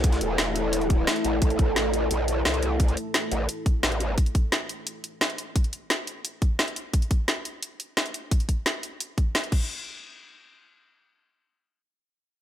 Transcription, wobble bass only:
X:1
M:4/4
L:1/8
Q:1/4=174
K:Aphr
V:1 name="Wobble bass" clef=bass
C,, E,,,4- E,,, z A,,, | A,,, A,,,3 B,,,2 C,,2- | C,, z2 A,,, z2 A,,,2 | z8 |
z8 | z8 | z8 | z8 |
z8 |]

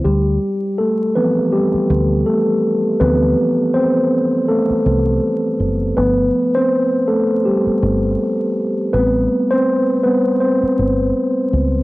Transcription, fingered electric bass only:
X:1
M:4/4
L:1/8
Q:"Swing 16ths" 1/4=81
K:Ddor
V:1 name="Fingered electric bass" clef=bass
D,, z4 D,, z2 | D,, z4 C,, z ^F,,, | G,,, z4 G,,, z2 | A,,, z4 G,,, z ^C,, |]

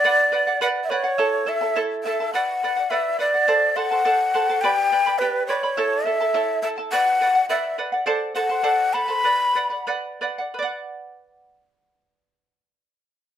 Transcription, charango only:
X:1
M:2/4
L:1/16
Q:1/4=104
K:Bm
V:1 name="Charango"
[Bdf]2 [Bdf] [df] [Bdf]2 [Bdf] [df] | [EAcea]2 [EAea] [EAa] [EAcea]2 [EAea] [EAa] | [Bdf]2 [Bdf] [df] [Bdf]2 [Bdf] [df] | [A=cdfa]2 [Acfa] [Aca] [Acdfa]2 [Acfa] [Aca] |
[GBdgb]2 [Bdgb] [Bdb] [GBdgb]2 [Bdgb] [Bdb] | [EAcea]2 [EAea] [EAa] [EAcea]2 [EAea] [EAa] | [Bdf]2 [Bdf] [df] [Bdf]2 [Bdf] [df] | [A=cdfa]2 [Acfa] [Aca] [Acdfa]2 [Acfa] [Aca] |
[Bdf]2 [Bdf] [df] [Bdf]2 [Bdf] [df] | [Bdf]8- | [Bdf]8 |]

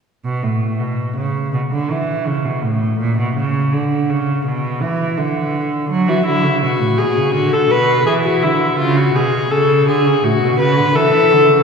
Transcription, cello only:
X:1
M:4/4
L:1/16
Q:1/4=83
K:Bm
V:1 name="Cello" clef=bass
z B,, A,,2 B,,2 C,2 B,, D, E,2 C, B,, A,,2 | ^A,, B,, C,2 D,2 C,2 B,,2 E,2 D,4 | F, E, D, C, B,, A,, B,, C, D,2 B,,2 E,2 D,2 | C,2 B,,2 C,2 D, C, A,, B,, C, D, E,2 D, C, |]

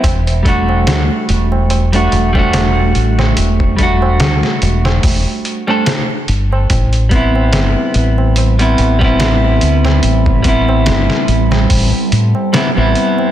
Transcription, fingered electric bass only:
X:1
M:4/4
L:1/16
Q:"Swing 16ths" 1/4=72
K:Em
V:1 name="Fingered electric bass" clef=bass
E,,,4 D,, z E,,,4 E,,,4 A,,,2 | E,,,4 D,, z E,,,2 E,,, z4 z G,,,2 | A,,,4 G,,, z A,,,4 A,,,4 D,,2 | A,,,4 G,,, z A,,,2 A,,, z A,, z2 A,,, z2 |]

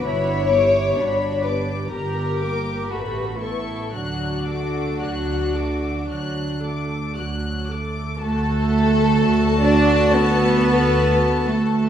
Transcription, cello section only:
X:1
M:4/4
L:1/8
Q:1/4=62
K:D
V:1 name="Cello section"
E2 D2 G2 F E | D6- D z | A,3 D B,3 A, |]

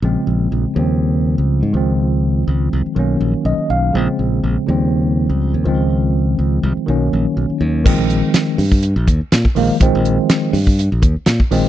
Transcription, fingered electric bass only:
X:1
M:4/4
L:1/16
Q:"Swing 16ths" 1/4=123
K:Bbdor
V:1 name="Fingered electric bass" clef=bass
B,,, z B,,,2 B,,, z E,,4- E,, D,,2 A,, D,,2- | D,,4 D,,2 C,, z =B,,,2 ^A,,, z B,,, z B,,,2 | B,,, z B,,,2 B,,, z E,,4- E,, D,,2 E,, D,,2- | D,,4 D,,2 C,, z =B,,,2 ^A,,, z B,,, z ^D,,2 |
B,,, B,,,2 z3 G,,3 B,,, E,, z B,, z B,,, z | B,,, B,,,2 z3 G,,3 B,,, E,, z B,, z B,,, z |]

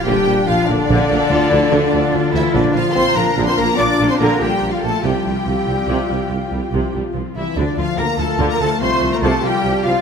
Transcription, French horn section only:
X:1
M:12/8
L:1/16
Q:3/8=96
K:Bblyd
V:1 name="French horn section"
G,4 F,2 D,16 E,2 | D,2 F,2 C2 B,3 C B,2 D3 C B,2 G,3 F, A,2 | G,16- G,2 z4 E,2 | D,2 F,2 B,2 A,3 B, A,2 C3 B, A,2 G,4 F,2 |]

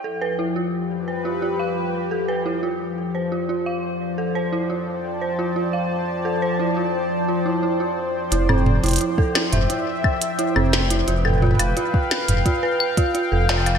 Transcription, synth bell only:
X:1
M:4/4
L:1/16
Q:1/4=87
K:Flyd
V:1 name="Synth bell"
A B E F z2 B F F f z2 A B E F | z2 c F F f z2 A c E F z2 c F | F f z2 A c E F z2 F E E F z2 | E C z E E A E e E z3 E C z E |
F A F f F z3 F B z F F A F f |]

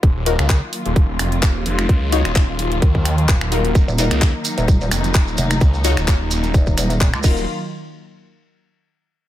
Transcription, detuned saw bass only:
X:1
M:4/4
L:1/16
Q:"Swing 16ths" 1/4=129
K:Ebm
V:1 name="Detuned saw bass" clef=bass
E,,, E,,,2 D,,2 z2 E,,,2 E,,, F,,,2 E,,,2 F,,,2 | D,,3 E,,,2 E,,,3 E,,4 E,,, E,,,3 | E,,, z2 D,,2 z4 z F,,,2 E,,,2 z2 | D,,3 E,,,2 E,,,3 z6 E,,,2 |
z16 |]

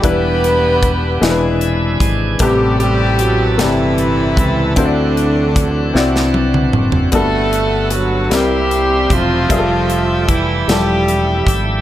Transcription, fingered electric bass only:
X:1
M:6/8
L:1/8
Q:3/8=51
K:Em
V:1 name="Fingered electric bass" clef=bass
E,,,3 E,,,2 ^G,,, | A,,,3 G,,,2 ^C,, | D,,3 C,,2 F,,, | G,,,3 C,,2 E,,, |
=F,,,3 E,,,2 _A,,, |]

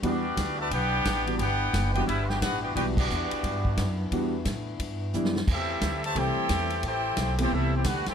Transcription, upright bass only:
X:1
M:4/4
L:1/8
Q:"Swing" 1/4=176
K:Em
V:1 name="Upright bass" clef=bass
E,,2 D,,2 B,,,2 A,,,2 | G,,,2 F,,,2 G,,,2 A,,,2 | B,,,2 E,, z G,,2 F,,2 | E,,2 A,,2 G,,2 F,,2 |
E,,2 D,,2 C,, z E,,2 | A,,,2 B,,,2 C,,2 D,, z |]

